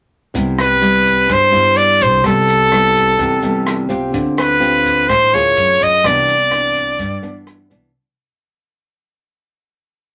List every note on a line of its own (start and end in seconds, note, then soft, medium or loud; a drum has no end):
0.34 1.25 C2 medium
0.34 1.27 C3 medium
0.34 0.65 G3 soft
0.34 0.65 B3 medium
0.34 0.65 E4 medium
0.34 kick medium
0.34 closed hi-hat medium
0.58 1.34 B4 medium
0.58 cross-stick medium
0.58 closed hi-hat soft
0.81 1.49 G3 medium
0.81 1.49 B3 soft
0.81 1.49 E4 medium
0.81 closed hi-hat soft
1.06 kick soft
1.06 closed hi-hat soft
1.28 2.21 G2 medium
1.28 1.52 G2 medium
1.28 kick medium
1.28 cross-stick medium
1.28 closed hi-hat medium
1.33 1.78 C5 medium
1.51 2.02 G2 medium
1.51 2.20 G3 medium
1.51 2.20 B3 medium
1.51 2.20 E4 medium
1.51 closed hi-hat soft
1.77 2.04 D5 loud
1.77 closed hi-hat soft
2.01 2.23 C2 loud
2.01 2.25 C5 medium
2.01 kick soft
2.01 closed hi-hat soft
2.24 3.15 C2 medium
2.24 3.17 C3 medium
2.24 2.68 G3 soft
2.24 2.68 B3 medium
2.24 2.68 E4 soft
2.24 3.87 A4 medium
2.24 kick medium
2.24 cross-stick medium
2.24 closed hi-hat medium
2.48 closed hi-hat soft
2.72 3.39 G3 medium
2.72 3.39 B3 medium
2.72 3.40 E4 medium
2.72 cross-stick medium
2.72 closed hi-hat soft
2.95 kick soft
2.95 closed hi-hat soft
3.19 3.41 E2 medium
3.19 4.12 C3 medium
3.19 kick medium
3.19 closed hi-hat soft
3.42 3.90 E2 medium
3.42 3.86 G3 medium
3.42 3.87 B3 medium
3.42 3.87 E4 medium
3.42 closed hi-hat soft
3.67 cross-stick medium
3.67 closed hi-hat soft
3.89 4.12 C2 medium
3.89 4.57 C4 medium
3.89 4.57 F4 medium
3.89 4.58 G4 medium
3.89 kick soft
3.89 closed hi-hat soft
4.13 5.05 D2 medium
4.13 5.06 D3 medium
4.13 kick medium
4.13 closed hi-hat medium
4.38 5.10 B4 medium
4.38 cross-stick medium
4.38 closed hi-hat soft
4.60 5.08 C4 medium
4.60 5.08 F4 medium
4.60 5.08 G4 medium
4.60 closed hi-hat soft
4.85 kick soft
4.85 closed hi-hat soft
5.09 5.31 A1 medium
5.09 5.54 A2 medium
5.09 5.36 C5 medium
5.09 kick medium
5.09 cross-stick medium
5.09 closed hi-hat medium
5.33 5.55 D2 medium
5.33 6.01 A#3 medium
5.33 6.01 F4 medium
5.33 6.01 G#4 medium
5.33 5.85 C#5 medium
5.33 closed hi-hat soft
5.56 5.78 F#2 medium
5.56 closed hi-hat soft
5.80 6.03 F#2 medium
5.80 6.08 D#5 medium
5.80 kick soft
5.80 closed hi-hat soft
6.04 6.95 C2 medium
6.04 6.97 C3 medium
6.04 6.35 E3 medium
6.04 6.35 B3 medium
6.04 6.36 D4 medium
6.04 7.48 D5 loud
6.04 kick medium
6.04 cross-stick medium
6.04 closed hi-hat medium
6.28 closed hi-hat soft
6.51 6.98 E3 soft
6.51 6.99 B3 medium
6.51 6.99 D4 medium
6.51 cross-stick medium
6.51 closed hi-hat soft
6.75 kick soft
6.75 closed hi-hat soft
6.99 7.91 G2 medium
6.99 7.21 G2 medium
6.99 kick medium
6.99 closed hi-hat medium
7.22 7.72 G2 medium
7.22 7.66 E3 medium
7.22 7.66 B3 medium
7.22 7.67 D4 medium
7.22 closed hi-hat soft
7.47 cross-stick medium
7.47 closed hi-hat soft
7.70 7.92 C2 medium
7.70 7.90 E3 medium
7.70 7.91 B3 medium
7.70 7.91 D4 medium
7.70 kick soft
7.70 closed hi-hat soft